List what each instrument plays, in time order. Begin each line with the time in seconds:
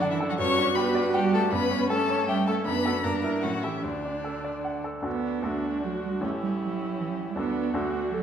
Already playing: grand piano F#2 D4 A4 D5, viola D4
0.00 cello D3, violin D4 D5, grand piano F#5
0.11 cello E3, violin E4 E5
0.21 grand piano A4
0.29 cello F#3, violin F#4 F#5
0.38 grand piano G2, cello C#4, viola F#4, violin C#5 C#6
0.59 grand piano D4
0.75 cello B3, grand piano G4, violin B4 B5
0.95 grand piano D5
1.14 cello G3, violin G4 G5, grand piano F#5
1.33 cello A3, grand piano G4, violin A4 A5
1.52 grand piano G2, cello B3, viola C#4, violin B4 B5
1.71 grand piano C#4
1.90 cello A3, grand piano A4, violin A4 A5
2.10 grand piano C#5
2.28 cello G3, violin G4 G5, grand piano E5
2.47 cello A3, violin A4 A5, grand piano A4
2.65 grand piano F#2, cello B3, viola D4, violin B4 B5
2.85 grand piano F#4 A4
3.03 grand piano G2, cello A#3, viola D4, violin A#4 A#5
3.24 grand piano E4 A#4
3.42 grand piano A2, cello F#3, viola C#4, violin F#4 F#5
3.63 cello E3, violin E4 E5, grand piano G4 A4
3.82 grand piano D2, cello D3, violin D4 D5, viola D4
4.05 grand piano D4
4.24 grand piano A4
4.44 grand piano D5
4.65 grand piano F#5
4.84 grand piano A4
5.02 grand piano D2 D4 F#4 A4, cello B3, violin D4 F#4
5.42 grand piano D2 D4 F#4 A4, cello A3, viola D4
5.84 cello F#3, viola F#4
6.04 cello G3
6.21 grand piano A1 C#4 G4 A4, cello A3, violin C#4 G4, viola E4
6.42 cello G3
6.60 cello F#3
6.99 cello E3
7.09 cello F#3
7.29 cello G3
7.36 grand piano D2 D4 F#4 A4, cello B3, viola D4, violin D4 F#4
7.73 grand piano D2 D4 F#4 A4, cello A3, viola F#4
8.14 cello F#3, viola A4